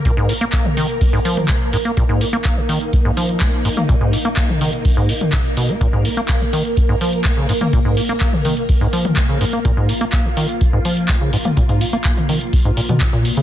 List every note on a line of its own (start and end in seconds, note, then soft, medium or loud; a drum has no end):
0.00 13.42 A#3 medium
0.00 2.00 A#4 medium
0.05 0.12 A#2 loud
0.05 kick loud
0.05 closed hi-hat medium
0.17 0.31 G#2 loud
0.29 0.33 A#2 medium
0.29 open hi-hat loud
0.41 0.45 A#3 loud
0.41 closed hi-hat medium
0.53 0.67 A#3 medium
0.53 kick loud
0.53 clap loud
0.53 closed hi-hat medium
0.65 0.69 A#2 medium
0.65 mid tom medium
0.77 0.87 D#3 medium
0.77 open hi-hat loud
0.89 closed hi-hat medium
1.01 kick loud
1.01 open hi-hat medium
1.13 1.20 G#2 loud
1.25 1.51 F3 medium
1.25 open hi-hat loud
1.37 closed hi-hat soft
1.37 mid tom medium
1.49 1.59 A#3 medium
1.49 kick loud
1.49 clap loud
1.49 closed hi-hat medium
1.73 1.77 G#2 medium
1.73 open hi-hat loud
1.85 1.92 A#3 medium
1.85 closed hi-hat medium
1.97 2.04 A#2 loud
1.97 5.83 D#4 medium
1.97 kick loud
1.97 closed hi-hat medium
2.09 2.23 G#2 loud
2.21 2.25 A#2 medium
2.21 open hi-hat loud
2.33 2.37 A#3 loud
2.33 closed hi-hat medium
2.45 2.59 A#3 medium
2.45 kick loud
2.45 clap loud
2.45 closed hi-hat medium
2.57 2.61 A#2 medium
2.69 2.79 D#3 medium
2.69 open hi-hat loud
2.81 closed hi-hat medium
2.93 kick loud
2.93 closed hi-hat medium
3.05 3.12 G#2 loud
3.17 3.43 F3 medium
3.17 open hi-hat loud
3.29 closed hi-hat soft
3.41 3.51 A#3 medium
3.41 kick loud
3.41 clap loud
3.41 closed hi-hat medium
3.65 3.69 G#2 medium
3.65 open hi-hat loud
3.77 3.84 A#3 medium
3.77 closed hi-hat medium
3.77 mid tom medium
3.89 3.96 A#2 loud
3.89 kick loud
3.89 closed hi-hat medium
4.01 4.15 G#2 loud
4.13 4.17 A#2 medium
4.13 open hi-hat loud
4.25 4.29 A#3 loud
4.25 closed hi-hat soft
4.37 4.51 A#3 medium
4.37 kick loud
4.37 clap loud
4.37 closed hi-hat medium
4.49 4.53 A#2 medium
4.49 mid tom medium
4.61 4.71 D#3 medium
4.61 open hi-hat loud
4.73 closed hi-hat medium
4.85 kick loud
4.85 open hi-hat medium
4.97 5.11 G#2 loud
5.09 5.13 B2 medium
5.09 open hi-hat loud
5.21 closed hi-hat soft
5.21 mid tom medium
5.33 5.37 G#2 medium
5.33 kick loud
5.33 clap loud
5.33 closed hi-hat medium
5.45 closed hi-hat soft
5.57 5.71 B2 medium
5.57 open hi-hat loud
5.69 5.76 A#3 medium
5.69 closed hi-hat soft
5.81 5.88 A#2 loud
5.81 9.68 A#4 medium
5.81 kick loud
5.81 closed hi-hat medium
5.93 6.06 G#2 loud
6.05 6.09 A#2 medium
6.05 open hi-hat loud
6.17 6.21 A#3 loud
6.17 closed hi-hat soft
6.29 6.42 A#3 medium
6.29 kick loud
6.29 clap loud
6.29 closed hi-hat medium
6.41 6.45 A#2 medium
6.53 6.63 D#3 medium
6.53 open hi-hat loud
6.65 closed hi-hat medium
6.77 kick loud
6.77 closed hi-hat medium
6.89 6.96 G#2 loud
7.01 7.27 F3 medium
7.01 open hi-hat loud
7.13 closed hi-hat soft
7.25 7.35 A#3 medium
7.25 kick loud
7.25 clap loud
7.25 closed hi-hat medium
7.37 7.47 C#3 medium
7.49 7.53 G#2 medium
7.49 open hi-hat loud
7.61 7.68 A#3 medium
7.61 closed hi-hat soft
7.61 mid tom medium
7.73 7.80 A#2 loud
7.73 kick loud
7.73 closed hi-hat medium
7.85 7.99 G#2 loud
7.97 8.01 A#2 medium
7.97 open hi-hat loud
8.09 8.13 A#3 loud
8.09 closed hi-hat soft
8.21 8.35 A#3 medium
8.21 kick loud
8.21 clap loud
8.21 closed hi-hat medium
8.33 8.37 A#2 medium
8.33 mid tom medium
8.45 8.55 D#3 medium
8.45 open hi-hat loud
8.57 closed hi-hat medium
8.69 kick loud
8.69 open hi-hat medium
8.81 8.88 G#2 loud
8.93 9.18 F3 medium
8.93 open hi-hat loud
9.05 closed hi-hat soft
9.05 mid tom medium
9.17 9.27 A#3 medium
9.17 kick loud
9.17 clap loud
9.17 closed hi-hat medium
9.29 9.39 C#3 medium
9.41 9.45 G#2 medium
9.41 open hi-hat loud
9.53 9.60 A#3 medium
9.53 closed hi-hat medium
9.65 9.72 A#2 loud
9.65 13.42 F4 medium
9.65 kick loud
9.65 closed hi-hat medium
9.77 9.90 G#2 loud
9.89 9.93 A#2 medium
9.89 open hi-hat loud
10.01 10.05 A#3 loud
10.01 closed hi-hat medium
10.13 10.26 A#3 medium
10.13 kick loud
10.13 clap loud
10.13 closed hi-hat medium
10.25 10.29 A#2 medium
10.37 10.47 D#3 medium
10.37 open hi-hat loud
10.49 closed hi-hat medium
10.61 kick loud
10.61 closed hi-hat medium
10.73 10.80 G#2 loud
10.85 11.11 F3 medium
10.85 open hi-hat loud
10.97 closed hi-hat medium
11.09 11.19 A#3 medium
11.09 kick loud
11.09 clap loud
11.09 closed hi-hat medium
11.21 11.31 C#3 medium
11.33 11.37 G#2 medium
11.33 open hi-hat loud
11.45 11.52 A#3 medium
11.45 closed hi-hat medium
11.45 mid tom medium
11.57 11.64 A#2 loud
11.57 kick loud
11.57 closed hi-hat medium
11.69 11.83 G#2 loud
11.69 closed hi-hat soft
11.81 11.85 A#2 medium
11.81 open hi-hat loud
11.93 11.97 A#3 loud
11.93 closed hi-hat medium
12.05 12.19 A#3 medium
12.05 kick loud
12.05 clap loud
12.05 closed hi-hat medium
12.17 12.21 A#2 medium
12.17 closed hi-hat soft
12.17 mid tom medium
12.29 12.39 D#3 medium
12.29 open hi-hat loud
12.41 closed hi-hat medium
12.53 kick loud
12.53 open hi-hat medium
12.65 12.72 G#2 loud
12.65 closed hi-hat soft
12.77 12.81 A#2 medium
12.77 open hi-hat loud
12.89 13.03 B2 medium
12.89 closed hi-hat medium
12.89 mid tom medium
13.01 13.08 G#2 medium
13.01 kick loud
13.01 clap loud
13.01 closed hi-hat medium
13.13 13.27 A#2 loud
13.13 closed hi-hat soft
13.25 13.32 B2 medium
13.25 open hi-hat loud
13.37 13.41 C#3 loud
13.37 closed hi-hat medium